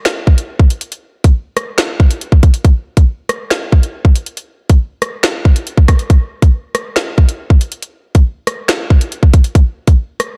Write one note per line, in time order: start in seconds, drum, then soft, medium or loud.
0.05 finger snap loud
0.05 snare loud
0.05 closed hi-hat medium
0.27 kick medium
0.38 closed hi-hat medium
0.59 kick medium
0.70 closed hi-hat medium
0.81 closed hi-hat medium
0.92 closed hi-hat medium
1.24 kick loud
1.24 closed hi-hat medium
1.57 cross-stick medium
1.57 closed hi-hat medium
1.78 finger snap loud
1.78 snare loud
1.78 closed hi-hat medium
2.00 kick loud
2.11 closed hi-hat medium
2.21 closed hi-hat medium
2.32 kick loud
2.43 kick loud
2.43 closed hi-hat medium
2.54 closed hi-hat medium
2.65 kick loud
2.65 closed hi-hat medium
2.97 kick loud
2.97 closed hi-hat medium
3.29 cross-stick medium
3.29 closed hi-hat medium
3.50 finger snap medium
3.50 snare loud
3.50 closed hi-hat medium
3.72 kick loud
3.83 closed hi-hat medium
4.05 kick medium
4.16 closed hi-hat medium
4.26 closed hi-hat medium
4.37 closed hi-hat medium
4.69 kick loud
4.69 closed hi-hat medium
5.02 cross-stick medium
5.02 closed hi-hat medium
5.23 finger snap loud
5.23 snare loud
5.23 closed hi-hat medium
5.45 kick loud
5.56 closed hi-hat medium
5.67 closed hi-hat medium
5.77 kick medium
5.88 kick loud
5.88 cross-stick loud
5.88 closed hi-hat medium
5.99 closed hi-hat medium
6.10 kick loud
6.10 closed hi-hat medium
6.42 kick loud
6.42 closed hi-hat medium
6.75 cross-stick medium
6.75 closed hi-hat medium
6.96 finger snap medium
6.96 snare loud
6.96 closed hi-hat medium
7.18 kick loud
7.29 closed hi-hat medium
7.50 kick medium
7.61 closed hi-hat medium
7.72 closed hi-hat medium
7.82 closed hi-hat medium
8.15 kick loud
8.15 closed hi-hat medium
8.47 cross-stick medium
8.47 closed hi-hat medium
8.68 finger snap medium
8.68 snare loud
8.68 closed hi-hat medium
8.90 kick loud
9.01 closed hi-hat medium
9.12 closed hi-hat medium
9.23 kick medium
9.33 kick loud
9.33 closed hi-hat medium
9.44 closed hi-hat medium
9.55 kick loud
9.55 closed hi-hat medium
9.87 kick loud
9.87 closed hi-hat medium
10.20 cross-stick medium
10.20 closed hi-hat medium